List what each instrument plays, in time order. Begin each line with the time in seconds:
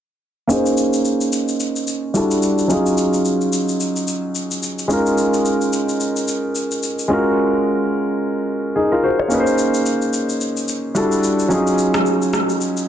0.47 grand piano A#3 C#4 D#4 G#4, shaker
0.53 grand piano C5
0.66 shaker
0.77 shaker
0.93 shaker
1.05 shaker
1.21 shaker
1.33 shaker
1.48 shaker
1.60 shaker
1.76 shaker
1.87 shaker
2.14 grand piano G3 D4 E4 F#4 A4, shaker
2.31 shaker
2.43 shaker
2.59 shaker
2.68 grand piano F#3 C#4 D#4 F4, shaker
2.73 grand piano G#4
2.86 shaker
2.98 shaker
3.13 shaker
3.25 shaker
3.41 shaker
3.53 shaker
3.69 shaker
3.80 shaker
3.96 shaker
4.08 shaker
4.35 shaker
4.51 shaker
4.63 shaker
4.79 shaker
4.88 grand piano G#3 C#4 D#4 F4, shaker
4.93 grand piano A#4
5.06 shaker
5.18 shaker
5.34 shaker
5.45 shaker
5.61 shaker
5.73 shaker
5.89 shaker
6.00 shaker
6.16 shaker
6.28 shaker
6.55 shaker
6.71 shaker
6.83 shaker
6.99 shaker
7.08 grand piano G#3 C#4 F4 F#4
7.13 grand piano A#4
8.76 grand piano D#4 G#4
8.92 grand piano F4 A#4
9.03 grand piano F#4 C5
9.19 grand piano G#4 C#5
9.28 grand piano A#3 C#4 D#4 G#4, shaker
9.33 grand piano B4
9.40 grand piano C5
9.47 shaker
9.58 shaker
9.74 shaker
9.86 shaker
10.02 shaker
10.13 shaker
10.29 shaker
10.41 shaker
10.57 shaker
10.68 shaker
10.95 grand piano G3 D4 E4 F#4 A4, shaker
11.12 shaker
11.23 shaker
11.39 shaker
11.48 grand piano F#3 C#4 D#4 F4, shaker
11.54 grand piano G#4
11.67 shaker
11.78 shaker
11.94 cross-stick, shaker
12.06 shaker
12.22 shaker
12.33 cross-stick, shaker
12.49 shaker
12.61 shaker
12.77 shaker